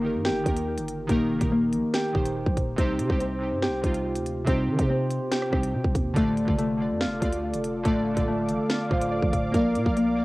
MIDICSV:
0, 0, Header, 1, 6, 480
1, 0, Start_track
1, 0, Tempo, 422535
1, 1241, Time_signature, 4, 2, 24, 8
1, 11642, End_track
2, 0, Start_track
2, 0, Title_t, "Analog synth pad"
2, 0, Program_c, 0, 89
2, 7000, Note_on_c, 0, 69, 86
2, 7001, Note_on_c, 0, 74, 81
2, 7001, Note_on_c, 0, 77, 78
2, 7001, Note_on_c, 0, 86, 94
2, 10802, Note_off_c, 0, 69, 0
2, 10841, Note_on_c, 0, 70, 86
2, 11642, Note_off_c, 0, 70, 0
2, 11642, Note_off_c, 0, 74, 0
2, 11642, Note_off_c, 0, 77, 0
2, 11642, Note_off_c, 0, 86, 0
2, 11642, End_track
3, 0, Start_track
3, 0, Title_t, "Synth keys"
3, 0, Program_c, 1, 88
3, 0, Control_c, 1, 64, 127
3, 0, Note_on_c, 1, 51, 81
3, 0, Note_on_c, 1, 63, 78
3, 0, Note_on_c, 1, 67, 83
3, 0, Note_on_c, 1, 70, 99
3, 15, Note_off_c, 1, 51, 0
3, 15, Note_on_c, 1, 51, 77
3, 32, Note_off_c, 1, 63, 0
3, 32, Note_on_c, 1, 63, 75
3, 50, Note_off_c, 1, 67, 0
3, 50, Note_on_c, 1, 67, 74
3, 67, Note_off_c, 1, 70, 0
3, 67, Note_on_c, 1, 70, 88
3, 329, Note_off_c, 1, 51, 0
3, 338, Note_off_c, 1, 63, 0
3, 347, Note_off_c, 1, 67, 0
3, 356, Note_off_c, 1, 70, 0
3, 495, Note_on_c, 1, 51, 79
3, 512, Note_on_c, 1, 63, 76
3, 530, Note_on_c, 1, 67, 78
3, 547, Note_on_c, 1, 70, 94
3, 960, Note_off_c, 1, 51, 0
3, 969, Note_off_c, 1, 63, 0
3, 977, Note_off_c, 1, 67, 0
3, 986, Note_off_c, 1, 70, 0
3, 1215, Note_on_c, 1, 51, 113
3, 1233, Note_on_c, 1, 63, 100
3, 1250, Note_on_c, 1, 67, 99
3, 1268, Note_on_c, 1, 70, 123
3, 1454, Note_off_c, 1, 51, 0
3, 1463, Note_off_c, 1, 63, 0
3, 1472, Note_off_c, 1, 67, 0
3, 1480, Note_off_c, 1, 70, 0
3, 1568, Note_on_c, 1, 51, 92
3, 1586, Note_on_c, 1, 63, 78
3, 1604, Note_on_c, 1, 67, 76
3, 1621, Note_on_c, 1, 70, 92
3, 2112, Note_off_c, 1, 51, 0
3, 2121, Note_off_c, 1, 63, 0
3, 2130, Note_off_c, 1, 67, 0
3, 2138, Note_off_c, 1, 70, 0
3, 2414, Note_on_c, 1, 51, 77
3, 2431, Note_on_c, 1, 63, 70
3, 2448, Note_on_c, 1, 67, 80
3, 2466, Note_on_c, 1, 72, 90
3, 2879, Note_off_c, 1, 51, 0
3, 2888, Note_off_c, 1, 63, 0
3, 2897, Note_off_c, 1, 67, 0
3, 2906, Note_off_c, 1, 72, 0
3, 3137, Note_on_c, 1, 48, 113
3, 3154, Note_on_c, 1, 60, 100
3, 3171, Note_on_c, 1, 63, 99
3, 3173, Control_c, 1, 64, 0
3, 3189, Note_on_c, 1, 67, 118
3, 3356, Control_c, 1, 64, 127
3, 3375, Note_off_c, 1, 48, 0
3, 3383, Note_off_c, 1, 60, 0
3, 3392, Note_off_c, 1, 63, 0
3, 3401, Note_off_c, 1, 67, 0
3, 3495, Note_on_c, 1, 48, 86
3, 3512, Note_on_c, 1, 60, 84
3, 3530, Note_on_c, 1, 63, 80
3, 3547, Note_on_c, 1, 67, 101
3, 3734, Note_off_c, 1, 48, 0
3, 3743, Note_off_c, 1, 60, 0
3, 3751, Note_off_c, 1, 63, 0
3, 3760, Note_off_c, 1, 67, 0
3, 3851, Note_on_c, 1, 48, 86
3, 3868, Note_on_c, 1, 60, 73
3, 3885, Note_on_c, 1, 63, 75
3, 3903, Note_on_c, 1, 67, 81
3, 4167, Note_off_c, 1, 48, 0
3, 4176, Note_off_c, 1, 60, 0
3, 4184, Note_off_c, 1, 63, 0
3, 4193, Note_off_c, 1, 67, 0
3, 4336, Note_on_c, 1, 48, 82
3, 4354, Note_on_c, 1, 60, 73
3, 4371, Note_on_c, 1, 63, 77
3, 4389, Note_on_c, 1, 65, 99
3, 4801, Note_off_c, 1, 48, 0
3, 4809, Note_off_c, 1, 60, 0
3, 4818, Note_off_c, 1, 63, 0
3, 4827, Note_off_c, 1, 65, 0
3, 5051, Note_on_c, 1, 48, 112
3, 5068, Note_on_c, 1, 60, 108
3, 5086, Note_on_c, 1, 63, 93
3, 5103, Note_on_c, 1, 67, 114
3, 5292, Note_off_c, 1, 48, 0
3, 5301, Note_off_c, 1, 60, 0
3, 5309, Note_off_c, 1, 63, 0
3, 5318, Note_off_c, 1, 67, 0
3, 5415, Note_on_c, 1, 48, 88
3, 5432, Note_on_c, 1, 60, 78
3, 5449, Note_on_c, 1, 63, 78
3, 5467, Note_on_c, 1, 67, 97
3, 5955, Note_off_c, 1, 48, 0
3, 5964, Note_off_c, 1, 60, 0
3, 5972, Note_off_c, 1, 63, 0
3, 5981, Note_off_c, 1, 67, 0
3, 6252, Note_on_c, 1, 48, 86
3, 6270, Note_on_c, 1, 60, 72
3, 6287, Note_on_c, 1, 63, 76
3, 6304, Note_on_c, 1, 67, 90
3, 6718, Note_off_c, 1, 48, 0
3, 6727, Note_off_c, 1, 60, 0
3, 6736, Note_off_c, 1, 63, 0
3, 6745, Note_off_c, 1, 67, 0
3, 6971, Note_on_c, 1, 50, 116
3, 6989, Note_on_c, 1, 57, 95
3, 7006, Note_on_c, 1, 65, 98
3, 7016, Control_c, 1, 64, 0
3, 7024, Note_on_c, 1, 74, 120
3, 7212, Note_off_c, 1, 50, 0
3, 7216, Control_c, 1, 64, 127
3, 7221, Note_off_c, 1, 57, 0
3, 7230, Note_off_c, 1, 65, 0
3, 7238, Note_off_c, 1, 74, 0
3, 7329, Note_on_c, 1, 50, 84
3, 7346, Note_on_c, 1, 57, 86
3, 7364, Note_on_c, 1, 65, 81
3, 7381, Note_on_c, 1, 74, 91
3, 7571, Note_off_c, 1, 50, 0
3, 7580, Note_off_c, 1, 57, 0
3, 7589, Note_off_c, 1, 65, 0
3, 7597, Note_off_c, 1, 74, 0
3, 7694, Note_on_c, 1, 50, 81
3, 7712, Note_on_c, 1, 57, 73
3, 7729, Note_on_c, 1, 65, 71
3, 7746, Note_on_c, 1, 74, 89
3, 8009, Note_off_c, 1, 50, 0
3, 8018, Note_off_c, 1, 57, 0
3, 8026, Note_off_c, 1, 65, 0
3, 8035, Note_off_c, 1, 74, 0
3, 8177, Note_on_c, 1, 50, 80
3, 8195, Note_on_c, 1, 57, 80
3, 8212, Note_on_c, 1, 65, 83
3, 8230, Note_on_c, 1, 74, 96
3, 8641, Note_off_c, 1, 50, 0
3, 8650, Note_off_c, 1, 57, 0
3, 8659, Note_off_c, 1, 65, 0
3, 8667, Note_off_c, 1, 74, 0
3, 8896, Note_on_c, 1, 50, 109
3, 8913, Note_on_c, 1, 57, 101
3, 8931, Note_on_c, 1, 65, 90
3, 8948, Note_on_c, 1, 74, 121
3, 9134, Note_off_c, 1, 50, 0
3, 9143, Note_off_c, 1, 57, 0
3, 9152, Note_off_c, 1, 65, 0
3, 9161, Note_off_c, 1, 74, 0
3, 9254, Note_on_c, 1, 50, 94
3, 9272, Note_on_c, 1, 57, 80
3, 9289, Note_on_c, 1, 65, 80
3, 9306, Note_on_c, 1, 74, 94
3, 9795, Note_off_c, 1, 50, 0
3, 9804, Note_off_c, 1, 57, 0
3, 9812, Note_off_c, 1, 65, 0
3, 9821, Note_off_c, 1, 74, 0
3, 10096, Note_on_c, 1, 50, 84
3, 10113, Note_on_c, 1, 57, 73
3, 10122, Note_on_c, 1, 72, 72
3, 10131, Note_on_c, 1, 65, 77
3, 10148, Note_on_c, 1, 77, 91
3, 10345, Note_off_c, 1, 72, 0
3, 10358, Note_on_c, 1, 74, 78
3, 10560, Note_off_c, 1, 50, 0
3, 10569, Note_off_c, 1, 57, 0
3, 10578, Note_off_c, 1, 65, 0
3, 10582, Note_off_c, 1, 74, 0
3, 10586, Note_off_c, 1, 77, 0
3, 10599, Note_on_c, 1, 77, 73
3, 10813, Note_on_c, 1, 58, 100
3, 10823, Note_off_c, 1, 77, 0
3, 10831, Note_on_c, 1, 70, 102
3, 10848, Note_on_c, 1, 74, 94
3, 10856, Control_c, 1, 64, 0
3, 10866, Note_on_c, 1, 77, 127
3, 11053, Note_off_c, 1, 58, 0
3, 11054, Control_c, 1, 64, 127
3, 11062, Note_off_c, 1, 70, 0
3, 11071, Note_off_c, 1, 74, 0
3, 11080, Note_off_c, 1, 77, 0
3, 11177, Note_on_c, 1, 58, 81
3, 11194, Note_on_c, 1, 70, 81
3, 11211, Note_on_c, 1, 74, 84
3, 11229, Note_on_c, 1, 77, 95
3, 11415, Note_off_c, 1, 58, 0
3, 11423, Note_off_c, 1, 70, 0
3, 11432, Note_off_c, 1, 74, 0
3, 11441, Note_off_c, 1, 77, 0
3, 11536, Note_on_c, 1, 58, 87
3, 11553, Note_on_c, 1, 70, 72
3, 11571, Note_on_c, 1, 74, 73
3, 11588, Note_on_c, 1, 77, 86
3, 11642, Note_off_c, 1, 58, 0
3, 11642, Note_off_c, 1, 70, 0
3, 11642, Note_off_c, 1, 74, 0
3, 11642, Note_off_c, 1, 77, 0
3, 11642, End_track
4, 0, Start_track
4, 0, Title_t, "Harp"
4, 0, Program_c, 2, 46
4, 0, Note_on_c, 2, 58, 85
4, 0, Note_on_c, 2, 65, 88
4, 281, Note_on_c, 2, 67, 98
4, 1226, Note_off_c, 2, 65, 0
4, 1235, Note_off_c, 2, 58, 0
4, 1240, Note_on_c, 2, 58, 95
4, 1716, Note_off_c, 2, 58, 0
4, 1720, Note_on_c, 2, 58, 82
4, 2198, Note_off_c, 2, 67, 0
4, 2203, Note_on_c, 2, 67, 94
4, 3159, Note_on_c, 2, 60, 91
4, 3636, Note_off_c, 2, 60, 0
4, 3641, Note_on_c, 2, 60, 86
4, 4116, Note_off_c, 2, 67, 0
4, 4120, Note_on_c, 2, 67, 98
4, 5076, Note_off_c, 2, 60, 0
4, 5080, Note_on_c, 2, 60, 89
4, 5373, Note_off_c, 2, 58, 0
4, 5556, Note_off_c, 2, 60, 0
4, 5560, Note_on_c, 2, 60, 86
4, 6033, Note_off_c, 2, 67, 0
4, 6038, Note_on_c, 2, 67, 96
4, 6999, Note_on_c, 2, 57, 94
4, 7475, Note_off_c, 2, 57, 0
4, 7479, Note_on_c, 2, 57, 89
4, 7959, Note_on_c, 2, 65, 92
4, 8712, Note_off_c, 2, 67, 0
4, 8916, Note_off_c, 2, 57, 0
4, 8921, Note_on_c, 2, 57, 94
4, 8968, Note_off_c, 2, 60, 0
4, 9397, Note_off_c, 2, 57, 0
4, 9402, Note_on_c, 2, 57, 79
4, 9877, Note_off_c, 2, 65, 0
4, 9881, Note_on_c, 2, 65, 99
4, 10842, Note_on_c, 2, 58, 92
4, 10910, Note_off_c, 2, 57, 0
4, 11317, Note_off_c, 2, 58, 0
4, 11321, Note_on_c, 2, 58, 89
4, 11642, Note_off_c, 2, 58, 0
4, 11642, Note_off_c, 2, 65, 0
4, 11642, End_track
5, 0, Start_track
5, 0, Title_t, "808-style bass"
5, 0, Program_c, 3, 38
5, 0, Note_on_c, 3, 31, 105
5, 161, Note_on_c, 3, 43, 99
5, 178, Note_off_c, 3, 31, 0
5, 341, Note_on_c, 3, 31, 101
5, 358, Note_off_c, 3, 43, 0
5, 512, Note_off_c, 3, 31, 0
5, 521, Note_on_c, 3, 39, 108
5, 882, Note_on_c, 3, 31, 100
5, 899, Note_off_c, 3, 39, 0
5, 1223, Note_off_c, 3, 31, 0
5, 1241, Note_on_c, 3, 27, 107
5, 1481, Note_on_c, 3, 29, 103
5, 1498, Note_off_c, 3, 27, 0
5, 1595, Note_off_c, 3, 29, 0
5, 1601, Note_on_c, 3, 27, 105
5, 1961, Note_on_c, 3, 34, 98
5, 1978, Note_off_c, 3, 27, 0
5, 2075, Note_off_c, 3, 34, 0
5, 2441, Note_on_c, 3, 27, 107
5, 2786, Note_off_c, 3, 27, 0
5, 2799, Note_on_c, 3, 34, 103
5, 2915, Note_off_c, 3, 34, 0
5, 2920, Note_on_c, 3, 27, 101
5, 3151, Note_off_c, 3, 27, 0
5, 3161, Note_on_c, 3, 36, 108
5, 3400, Note_on_c, 3, 48, 102
5, 3417, Note_off_c, 3, 36, 0
5, 3515, Note_off_c, 3, 48, 0
5, 3521, Note_on_c, 3, 36, 109
5, 4000, Note_on_c, 3, 43, 100
5, 4017, Note_off_c, 3, 36, 0
5, 4181, Note_on_c, 3, 36, 102
5, 4198, Note_off_c, 3, 43, 0
5, 4352, Note_off_c, 3, 36, 0
5, 4360, Note_on_c, 3, 36, 105
5, 4720, Note_on_c, 3, 38, 98
5, 4737, Note_off_c, 3, 36, 0
5, 5062, Note_off_c, 3, 38, 0
5, 5081, Note_on_c, 3, 36, 109
5, 5320, Note_on_c, 3, 51, 102
5, 5337, Note_off_c, 3, 36, 0
5, 5435, Note_off_c, 3, 51, 0
5, 5440, Note_on_c, 3, 48, 101
5, 5901, Note_off_c, 3, 48, 0
5, 6280, Note_on_c, 3, 36, 104
5, 6521, Note_on_c, 3, 48, 96
5, 6538, Note_off_c, 3, 36, 0
5, 6635, Note_off_c, 3, 48, 0
5, 6639, Note_on_c, 3, 36, 103
5, 6755, Note_off_c, 3, 36, 0
5, 6760, Note_on_c, 3, 39, 105
5, 6991, Note_off_c, 3, 39, 0
5, 7000, Note_on_c, 3, 26, 115
5, 7346, Note_off_c, 3, 26, 0
5, 7361, Note_on_c, 3, 29, 105
5, 7841, Note_on_c, 3, 41, 99
5, 7858, Note_off_c, 3, 29, 0
5, 8021, Note_on_c, 3, 29, 101
5, 8038, Note_off_c, 3, 41, 0
5, 8192, Note_off_c, 3, 29, 0
5, 8200, Note_on_c, 3, 38, 106
5, 8560, Note_on_c, 3, 29, 100
5, 8577, Note_off_c, 3, 38, 0
5, 8902, Note_off_c, 3, 29, 0
5, 8920, Note_on_c, 3, 26, 103
5, 9160, Note_on_c, 3, 27, 99
5, 9177, Note_off_c, 3, 26, 0
5, 9274, Note_off_c, 3, 27, 0
5, 9280, Note_on_c, 3, 26, 110
5, 9640, Note_on_c, 3, 33, 103
5, 9657, Note_off_c, 3, 26, 0
5, 9754, Note_off_c, 3, 33, 0
5, 10120, Note_on_c, 3, 26, 103
5, 10466, Note_off_c, 3, 26, 0
5, 10479, Note_on_c, 3, 33, 101
5, 10592, Note_off_c, 3, 33, 0
5, 10599, Note_on_c, 3, 26, 103
5, 10830, Note_off_c, 3, 26, 0
5, 10840, Note_on_c, 3, 34, 104
5, 11081, Note_on_c, 3, 46, 105
5, 11098, Note_off_c, 3, 34, 0
5, 11195, Note_off_c, 3, 46, 0
5, 11201, Note_on_c, 3, 34, 102
5, 11642, Note_off_c, 3, 34, 0
5, 11642, End_track
6, 0, Start_track
6, 0, Title_t, "Drums"
6, 282, Note_on_c, 9, 38, 123
6, 395, Note_off_c, 9, 38, 0
6, 521, Note_on_c, 9, 36, 93
6, 522, Note_on_c, 9, 42, 82
6, 635, Note_off_c, 9, 36, 0
6, 636, Note_off_c, 9, 42, 0
6, 641, Note_on_c, 9, 42, 83
6, 755, Note_off_c, 9, 42, 0
6, 881, Note_on_c, 9, 42, 84
6, 995, Note_off_c, 9, 42, 0
6, 1001, Note_on_c, 9, 42, 84
6, 1115, Note_off_c, 9, 42, 0
6, 1240, Note_on_c, 9, 42, 86
6, 1241, Note_on_c, 9, 36, 121
6, 1354, Note_off_c, 9, 36, 0
6, 1354, Note_off_c, 9, 42, 0
6, 1601, Note_on_c, 9, 36, 91
6, 1601, Note_on_c, 9, 42, 84
6, 1714, Note_off_c, 9, 42, 0
6, 1715, Note_off_c, 9, 36, 0
6, 1961, Note_on_c, 9, 42, 67
6, 2075, Note_off_c, 9, 42, 0
6, 2201, Note_on_c, 9, 38, 120
6, 2202, Note_on_c, 9, 42, 76
6, 2315, Note_off_c, 9, 38, 0
6, 2315, Note_off_c, 9, 42, 0
6, 2441, Note_on_c, 9, 36, 98
6, 2555, Note_off_c, 9, 36, 0
6, 2562, Note_on_c, 9, 42, 81
6, 2675, Note_off_c, 9, 42, 0
6, 2800, Note_on_c, 9, 36, 102
6, 2913, Note_off_c, 9, 36, 0
6, 2920, Note_on_c, 9, 36, 94
6, 2921, Note_on_c, 9, 42, 83
6, 3034, Note_off_c, 9, 36, 0
6, 3035, Note_off_c, 9, 42, 0
6, 3160, Note_on_c, 9, 42, 91
6, 3161, Note_on_c, 9, 36, 117
6, 3274, Note_off_c, 9, 36, 0
6, 3274, Note_off_c, 9, 42, 0
6, 3399, Note_on_c, 9, 42, 84
6, 3513, Note_off_c, 9, 42, 0
6, 3521, Note_on_c, 9, 36, 93
6, 3634, Note_off_c, 9, 36, 0
6, 3641, Note_on_c, 9, 42, 64
6, 3755, Note_off_c, 9, 42, 0
6, 4119, Note_on_c, 9, 38, 123
6, 4233, Note_off_c, 9, 38, 0
6, 4360, Note_on_c, 9, 36, 94
6, 4362, Note_on_c, 9, 42, 86
6, 4474, Note_off_c, 9, 36, 0
6, 4475, Note_off_c, 9, 42, 0
6, 4480, Note_on_c, 9, 42, 85
6, 4594, Note_off_c, 9, 42, 0
6, 4720, Note_on_c, 9, 42, 82
6, 4834, Note_off_c, 9, 42, 0
6, 4841, Note_on_c, 9, 42, 85
6, 4955, Note_off_c, 9, 42, 0
6, 5081, Note_on_c, 9, 36, 123
6, 5081, Note_on_c, 9, 42, 87
6, 5194, Note_off_c, 9, 36, 0
6, 5194, Note_off_c, 9, 42, 0
6, 5440, Note_on_c, 9, 42, 83
6, 5441, Note_on_c, 9, 36, 94
6, 5554, Note_off_c, 9, 36, 0
6, 5554, Note_off_c, 9, 42, 0
6, 5801, Note_on_c, 9, 42, 69
6, 5915, Note_off_c, 9, 42, 0
6, 6040, Note_on_c, 9, 38, 125
6, 6041, Note_on_c, 9, 42, 77
6, 6154, Note_off_c, 9, 38, 0
6, 6155, Note_off_c, 9, 42, 0
6, 6160, Note_on_c, 9, 37, 69
6, 6274, Note_off_c, 9, 37, 0
6, 6280, Note_on_c, 9, 36, 96
6, 6281, Note_on_c, 9, 37, 88
6, 6394, Note_off_c, 9, 36, 0
6, 6394, Note_off_c, 9, 37, 0
6, 6401, Note_on_c, 9, 42, 84
6, 6515, Note_off_c, 9, 42, 0
6, 6640, Note_on_c, 9, 36, 99
6, 6753, Note_off_c, 9, 36, 0
6, 6760, Note_on_c, 9, 36, 99
6, 6762, Note_on_c, 9, 42, 84
6, 6873, Note_off_c, 9, 36, 0
6, 6875, Note_off_c, 9, 42, 0
6, 7000, Note_on_c, 9, 36, 119
6, 7000, Note_on_c, 9, 42, 88
6, 7114, Note_off_c, 9, 36, 0
6, 7114, Note_off_c, 9, 42, 0
6, 7240, Note_on_c, 9, 42, 80
6, 7353, Note_off_c, 9, 42, 0
6, 7361, Note_on_c, 9, 36, 92
6, 7475, Note_off_c, 9, 36, 0
6, 7482, Note_on_c, 9, 42, 65
6, 7596, Note_off_c, 9, 42, 0
6, 7961, Note_on_c, 9, 38, 126
6, 8074, Note_off_c, 9, 38, 0
6, 8201, Note_on_c, 9, 36, 95
6, 8201, Note_on_c, 9, 42, 84
6, 8314, Note_off_c, 9, 36, 0
6, 8315, Note_off_c, 9, 42, 0
6, 8321, Note_on_c, 9, 42, 84
6, 8435, Note_off_c, 9, 42, 0
6, 8561, Note_on_c, 9, 42, 83
6, 8675, Note_off_c, 9, 42, 0
6, 8681, Note_on_c, 9, 42, 82
6, 8795, Note_off_c, 9, 42, 0
6, 8920, Note_on_c, 9, 36, 120
6, 8920, Note_on_c, 9, 42, 90
6, 9034, Note_off_c, 9, 36, 0
6, 9034, Note_off_c, 9, 42, 0
6, 9280, Note_on_c, 9, 42, 82
6, 9281, Note_on_c, 9, 36, 89
6, 9393, Note_off_c, 9, 42, 0
6, 9394, Note_off_c, 9, 36, 0
6, 9640, Note_on_c, 9, 42, 67
6, 9754, Note_off_c, 9, 42, 0
6, 9880, Note_on_c, 9, 38, 124
6, 9880, Note_on_c, 9, 42, 76
6, 9993, Note_off_c, 9, 38, 0
6, 9994, Note_off_c, 9, 42, 0
6, 10120, Note_on_c, 9, 36, 97
6, 10234, Note_off_c, 9, 36, 0
6, 10240, Note_on_c, 9, 42, 81
6, 10354, Note_off_c, 9, 42, 0
6, 10479, Note_on_c, 9, 36, 98
6, 10593, Note_off_c, 9, 36, 0
6, 10599, Note_on_c, 9, 36, 96
6, 10600, Note_on_c, 9, 42, 86
6, 10713, Note_off_c, 9, 36, 0
6, 10713, Note_off_c, 9, 42, 0
6, 10839, Note_on_c, 9, 42, 88
6, 10840, Note_on_c, 9, 36, 118
6, 10953, Note_off_c, 9, 42, 0
6, 10954, Note_off_c, 9, 36, 0
6, 11079, Note_on_c, 9, 42, 86
6, 11193, Note_off_c, 9, 42, 0
6, 11201, Note_on_c, 9, 36, 95
6, 11314, Note_off_c, 9, 36, 0
6, 11322, Note_on_c, 9, 42, 64
6, 11436, Note_off_c, 9, 42, 0
6, 11642, End_track
0, 0, End_of_file